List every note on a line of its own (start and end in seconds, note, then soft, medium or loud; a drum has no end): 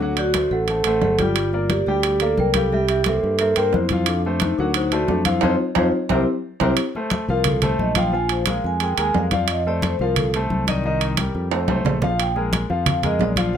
0.00 0.47 D2 medium
0.00 0.29 F#3 medium
0.00 0.16 D4 medium
0.00 0.29 F#4 medium
0.00 0.17 A4 medium
0.00 0.30 F#5 medium
0.00 high conga soft
0.17 0.53 F#4 loud
0.17 0.50 D5 medium
0.17 high conga soft
0.17 high timbale medium
0.34 0.63 A3 medium
0.34 0.63 A4 medium
0.34 0.63 C5 medium
0.34 high conga loud
0.34 high timbale medium
0.51 0.83 A1 medium
0.51 0.83 A4 medium
0.51 0.84 F#5 medium
0.51 high conga soft
0.68 0.83 A3 medium
0.68 0.83 A4 medium
0.68 0.83 C5 medium
0.68 high conga soft
0.68 high timbale medium
0.84 1.01 A1 medium
0.84 1.14 A3 medium
0.84 1.01 A4 loud
0.84 1.14 A4 medium
0.84 1.14 C5 medium
0.84 1.02 F#5 medium
0.84 high conga soft
0.84 high timbale medium
1.02 1.82 G1 medium
1.02 1.18 A4 medium
1.02 1.19 F#5 medium
1.02 high conga medium
1.02 low timbale medium
1.19 1.47 G3 medium
1.19 1.72 F4 medium
1.19 1.48 G4 medium
1.19 1.67 D5 medium
1.19 1.48 G5 medium
1.19 high conga medium
1.19 high timbale medium
1.36 high conga soft
1.36 high timbale medium
1.53 1.81 A#3 medium
1.53 1.82 A#4 medium
1.53 1.82 D5 medium
1.53 high conga soft
1.70 1.86 G4 medium
1.70 1.86 D5 medium
1.70 high conga medium
1.70 high timbale medium
1.86 2.35 D2 medium
1.86 2.16 G3 medium
1.86 2.22 G4 medium
1.86 2.16 G4 medium
1.86 2.20 D5 medium
1.86 2.16 G5 medium
1.86 high conga soft
2.03 high conga soft
2.03 high timbale medium
2.20 2.49 A#3 medium
2.20 2.29 A4 loud
2.20 2.50 A#4 medium
2.20 2.50 D5 medium
2.20 2.29 F5 medium
2.20 high conga soft
2.20 high timbale medium
2.37 3.18 C2 medium
2.37 2.56 A#4 medium
2.37 2.55 G5 medium
2.37 high conga medium
2.54 2.69 G3 medium
2.54 2.69 G4 medium
2.54 2.73 A4 medium
2.54 2.72 F5 medium
2.54 2.69 G5 medium
2.54 high conga medium
2.54 high timbale medium
2.72 3.00 G3 medium
2.72 2.80 G4 medium
2.72 3.01 G4 medium
2.72 2.81 E5 medium
2.72 3.01 G5 medium
2.72 high conga soft
2.88 2.96 G4 medium
2.88 2.97 E5 medium
2.88 high conga soft
2.88 high timbale medium
3.04 3.34 A#3 medium
3.04 3.34 G4 medium
3.04 3.37 A4 medium
3.04 3.34 C5 medium
3.04 3.39 E5 medium
3.04 high conga loud
3.04 high timbale medium
3.23 3.55 G2 medium
3.23 high conga soft
3.38 3.54 A#3 medium
3.38 3.55 A4 loud
3.38 3.54 A#4 medium
3.38 3.55 C5 medium
3.38 3.56 E5 medium
3.38 high conga soft
3.38 high timbale medium
3.56 3.73 G2 medium
3.56 3.85 A#3 medium
3.56 3.72 A#4 medium
3.56 3.85 A#4 medium
3.56 3.85 C5 medium
3.56 3.73 G5 medium
3.56 high conga soft
3.56 high timbale medium
3.73 4.53 F2 loud
3.73 4.05 E4 medium
3.73 4.06 C5 medium
3.73 high conga medium
3.73 low timbale medium
3.89 4.19 F3 medium
3.89 4.20 F4 medium
3.89 4.20 F5 medium
3.89 high conga medium
3.89 high timbale medium
4.06 4.42 D4 medium
4.06 4.40 A4 medium
4.06 high conga soft
4.06 high timbale medium
4.25 4.53 A3 medium
4.25 4.53 A4 medium
4.25 4.54 C5 medium
4.25 high conga soft
4.40 4.58 D#4 medium
4.40 4.58 C5 medium
4.40 high conga medium
4.40 high timbale medium
4.58 5.06 D2 medium
4.58 4.87 F#3 medium
4.58 4.66 D4 medium
4.58 4.87 F#4 medium
4.58 4.67 A#4 medium
4.58 4.87 F#5 medium
4.58 high conga soft
4.74 4.92 D#4 medium
4.74 4.92 C5 medium
4.74 high conga soft
4.74 high timbale medium
4.92 5.20 A3 medium
4.92 5.10 F#4 medium
4.92 5.20 A4 medium
4.92 5.21 C5 medium
4.92 5.09 D5 medium
4.92 high conga soft
4.92 high timbale medium
5.08 5.41 F2 medium
5.08 5.24 D4 medium
5.08 5.26 A4 medium
5.08 high conga medium
5.08 low timbale medium
5.25 5.39 F3 medium
5.25 5.34 E4 medium
5.25 5.40 F4 medium
5.25 5.34 C5 medium
5.25 5.40 F5 medium
5.25 high conga medium
5.25 high timbale medium
5.41 5.56 F2 medium
5.41 5.54 C4 medium
5.41 5.54 D#4 medium
5.41 5.53 F4 loud
5.41 5.54 F4 medium
5.41 5.53 A4 medium
5.41 5.53 C5 medium
5.41 5.55 C5 medium
5.41 5.54 D#5 medium
5.41 5.54 F5 medium
5.41 high conga medium
5.41 high timbale medium
5.75 5.90 F2 medium
5.75 5.88 C4 medium
5.75 5.88 D#4 medium
5.75 5.87 F4 medium
5.75 5.88 F4 medium
5.75 5.87 A4 medium
5.75 5.87 C5 medium
5.75 5.87 D#5 medium
5.75 5.88 F5 medium
5.75 high conga loud
5.75 high timbale loud
6.09 6.23 C2 medium
6.09 6.22 C4 medium
6.09 6.22 E4 medium
6.09 6.22 G4 medium
6.09 6.21 A#4 medium
6.09 6.22 A#4 medium
6.09 6.21 C5 medium
6.09 6.22 C5 medium
6.09 6.22 E5 medium
6.09 high conga loud
6.09 high timbale medium
6.60 6.74 C2 medium
6.60 6.72 C4 medium
6.60 6.72 E4 medium
6.60 6.72 G4 medium
6.60 6.72 A#4 medium
6.60 6.73 A#4 loud
6.60 6.72 C5 medium
6.60 6.73 C5 medium
6.60 6.72 E5 medium
6.60 high conga loud
6.60 high timbale medium
6.77 high conga soft
6.77 high timbale medium
6.95 7.23 A3 medium
6.95 7.24 A4 medium
6.95 7.24 C5 medium
6.95 high conga soft
7.10 high conga loud
7.10 high timbale medium
7.28 7.76 C2 medium
7.28 7.57 F3 medium
7.28 7.57 F4 medium
7.28 7.46 A#4 medium
7.28 7.57 F5 medium
7.28 high conga soft
7.44 7.63 A4 medium
7.44 high conga soft
7.44 low conga medium
7.44 high timbale medium
7.62 7.90 A3 medium
7.62 7.91 A4 medium
7.62 7.91 C5 medium
7.62 7.79 C5 medium
7.62 high conga soft
7.62 low conga medium
7.62 high timbale medium
7.79 8.58 A#1 medium
7.79 7.97 D#5 medium
7.79 high conga medium
7.95 8.10 F3 medium
7.95 8.11 F4 medium
7.95 8.11 F5 medium
7.95 8.13 G5 medium
7.95 high conga medium
7.95 high timbale medium
8.13 8.41 F3 medium
8.13 8.41 F4 medium
8.13 8.41 F5 medium
8.13 8.31 G#5 medium
8.13 high conga soft
8.29 8.47 C5 medium
8.29 high conga soft
8.29 high timbale medium
8.46 8.75 G#3 medium
8.46 8.75 G#4 medium
8.46 8.75 A#4 medium
8.46 8.65 F5 medium
8.46 high conga loud
8.46 high timbale medium
8.64 8.96 F2 medium
8.64 8.82 G#5 medium
8.64 high conga soft
8.80 8.95 G#3 medium
8.80 8.95 G#4 medium
8.80 8.95 A#4 medium
8.80 8.99 G5 medium
8.80 high conga soft
8.80 high timbale medium
8.97 9.14 D#2 medium
8.97 9.25 G#3 medium
8.97 9.26 G#4 medium
8.97 9.26 A#4 medium
8.97 9.16 G#5 loud
8.97 high conga soft
8.97 high timbale medium
9.14 9.94 F2 medium
9.14 9.33 F5 medium
9.14 high conga medium
9.14 low timbale medium
9.31 9.60 F3 medium
9.31 9.60 F4 medium
9.31 9.49 D5 medium
9.31 9.60 F5 medium
9.31 high conga medium
9.31 high timbale medium
9.48 high conga soft
9.48 high timbale medium
9.52 9.67 D#5 medium
9.66 9.94 A3 medium
9.66 9.94 A4 medium
9.66 9.94 C5 medium
9.66 9.83 D5 medium
9.66 high conga soft
9.82 10.00 C5 medium
9.82 high conga loud
9.82 high timbale medium
9.99 10.47 C2 medium
9.99 10.28 F3 medium
9.99 10.28 F4 medium
9.99 10.17 A#4 medium
9.99 10.28 F5 medium
9.99 high conga soft
10.16 10.27 A4 medium
10.16 high conga soft
10.16 low conga medium
10.16 high timbale loud
10.34 10.62 A3 medium
10.34 10.63 A4 medium
10.34 10.63 C5 medium
10.34 high conga soft
10.34 high timbale medium
10.50 11.29 C2 medium
10.50 high conga medium
10.67 10.81 D#3 medium
10.67 10.82 D#4 medium
10.67 10.85 D5 medium
10.67 10.82 D#5 medium
10.67 high conga medium
10.67 high timbale medium
10.84 11.12 D#3 medium
10.84 11.13 D#4 medium
10.84 11.13 D#5 medium
10.84 11.01 D#5 medium
10.84 high conga soft
11.00 high conga soft
11.00 high timbale medium
11.17 11.46 G3 medium
11.17 11.46 G4 medium
11.17 11.46 A#4 medium
11.17 high conga loud
11.17 high timbale medium
11.35 11.66 F2 medium
11.35 high conga soft
11.51 11.66 A3 medium
11.51 11.66 A4 medium
11.51 11.66 C5 medium
11.51 high conga soft
11.51 high timbale medium
11.68 11.84 C2 medium
11.68 11.96 A3 medium
11.68 11.97 A4 medium
11.68 11.97 C5 medium
11.68 high conga loud
11.68 high timbale medium
11.85 12.64 A#1 medium
11.85 low conga medium
11.85 low timbale medium
12.02 12.30 F3 medium
12.02 12.31 F4 medium
12.02 12.31 F5 medium
12.02 12.19 F5 medium
12.02 low conga medium
12.02 low timbale medium
12.19 12.31 G5 medium
12.19 high conga soft
12.19 high timbale medium
12.36 12.64 G#3 medium
12.36 12.64 G#4 medium
12.36 12.64 A#4 medium
12.36 high conga soft
12.53 high conga loud
12.53 high timbale medium
12.70 13.17 F2 medium
12.70 12.97 F3 medium
12.70 12.98 F4 medium
12.70 12.98 F5 medium
12.70 high conga soft
12.86 13.04 F5 medium
12.86 high conga soft
12.86 low conga medium
12.86 high timbale medium
13.03 13.31 G#3 medium
13.03 13.31 G#4 medium
13.03 13.31 A#4 medium
13.03 13.21 D#5 medium
13.03 high conga soft
13.03 low conga medium
13.03 high timbale medium
13.19 13.57 A#1 medium
13.19 13.53 D5 medium
13.19 high conga medium
13.19 low timbale medium
13.36 13.51 F3 medium
13.36 13.51 F4 medium
13.36 13.51 F5 medium
13.36 high conga medium
13.36 high timbale medium
13.53 13.57 F3 medium
13.53 high conga soft